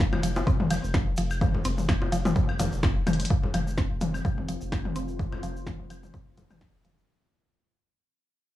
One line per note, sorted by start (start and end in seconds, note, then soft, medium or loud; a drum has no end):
0.00 kick loud
0.00 snare medium
0.00 shaker soft
0.13 0.42 F1 loud
0.13 high tom soft
0.13 high bongo medium
0.13 claves medium
0.23 0.29 F3 medium
0.23 closed hi-hat medium
0.23 ride medium
0.23 shaker medium
0.36 high bongo medium
0.36 shaker medium
0.47 0.78 F1 medium
0.47 0.51 C4 medium
0.47 kick loud
0.47 shaker soft
0.60 high tom medium
0.71 0.73 F3 medium
0.71 closed hi-hat medium
0.71 ride medium
0.71 claves medium
0.71 shaker medium
0.83 1.13 F1 loud
0.83 shaker soft
0.94 0.98 F3 loud
0.94 kick loud
0.94 snare medium
0.94 high tom soft
0.94 shaker soft
1.17 1.49 F1 medium
1.17 1.21 F3 medium
1.17 closed hi-hat medium
1.17 ride medium
1.17 shaker medium
1.30 claves medium
1.30 shaker soft
1.41 1.47 F3 medium
1.41 kick loud
1.41 high tom medium
1.41 shaker soft
1.54 low conga medium
1.65 1.96 F1 loud
1.65 1.69 C4 medium
1.65 closed hi-hat medium
1.65 ride medium
1.65 shaker medium
1.78 high tom soft
1.78 shaker medium
1.89 1.91 F3 medium
1.89 kick loud
1.89 snare loud
1.89 claves medium
1.89 shaker soft
2.02 2.31 F1 loud
2.02 high bongo medium
2.12 2.16 F3 loud
2.12 closed hi-hat medium
2.12 ride medium
2.12 shaker medium
2.25 high tom medium
2.25 high bongo medium
2.25 shaker medium
2.35 2.67 F1 medium
2.35 2.39 F3 medium
2.35 kick loud
2.35 shaker soft
2.49 claves medium
2.59 2.65 F3 medium
2.59 closed hi-hat medium
2.59 high tom soft
2.59 ride medium
2.59 low conga loud
2.59 shaker loud
2.72 3.02 F1 loud
2.72 shaker medium
2.83 2.87 C4 medium
2.83 kick loud
2.83 snare medium
2.83 shaker soft
3.07 3.25 F1 medium
3.07 3.09 F3 medium
3.07 closed hi-hat medium
3.07 high tom medium
3.07 claves medium
3.07 shaker medium
3.13 closed hi-hat medium
3.20 closed hi-hat medium
3.20 shaker soft
3.25 closed hi-hat medium
3.30 3.34 F3 medium
3.30 7.08 C4 medium
3.30 kick loud
3.30 shaker soft
3.43 7.08 F4 medium
3.43 low conga medium
3.52 3.85 F1 loud
3.52 3.59 F3 medium
3.52 7.08 F5 medium
3.52 closed hi-hat medium
3.52 high tom soft
3.52 claves medium
3.52 shaker medium
3.67 shaker medium
3.77 3.81 C4 medium
3.77 kick loud
3.77 snare medium
3.77 shaker soft
3.91 4.20 F1 loud
3.97 7.08 C6 medium
3.97 closed hi-hat medium
3.97 shaker medium
4.01 4.03 F3 medium
4.01 high tom medium
4.14 claves medium
4.14 shaker medium
4.25 4.56 F1 medium
4.25 4.28 F3 loud
4.25 kick loud
4.25 shaker soft
4.38 high tom soft
4.49 4.52 F3 medium
4.49 closed hi-hat medium
4.49 shaker medium
4.61 4.91 F1 medium
4.61 shaker medium
4.72 4.78 F3 medium
4.72 kick loud
4.72 snare medium
4.72 claves medium
4.72 shaker soft
4.85 high tom medium
4.96 5.27 F1 medium
4.96 4.99 C4 medium
4.96 closed hi-hat medium
4.96 shaker medium
5.08 shaker medium
5.19 5.22 F3 medium
5.19 kick loud
5.19 high tom soft
5.19 shaker soft
5.32 low conga medium
5.32 claves medium
5.43 5.74 F1 loud
5.43 5.47 F3 loud
5.43 closed hi-hat medium
5.43 shaker medium
5.57 shaker soft
5.66 5.70 F3 medium
5.66 kick loud
5.66 snare medium
5.66 high tom medium
5.66 shaker soft
5.80 6.09 F1 loud
5.90 5.96 F3 medium
5.90 closed hi-hat medium
5.90 claves medium
5.90 shaker medium
6.03 high tom soft
6.03 shaker medium
6.14 6.45 F1 medium
6.14 6.17 C4 medium
6.14 kick loud
6.14 shaker soft
6.37 6.40 F3 medium
6.37 closed hi-hat medium
6.37 low conga medium
6.37 shaker medium
6.50 6.80 F1 medium
6.50 high tom medium
6.50 claves medium
6.50 shaker soft
6.61 6.65 F3 medium
6.61 kick loud
6.61 snare medium
6.84 7.03 F1 medium
6.84 6.88 F3 medium
6.84 closed hi-hat medium
6.84 high tom soft
6.84 shaker medium
6.98 shaker soft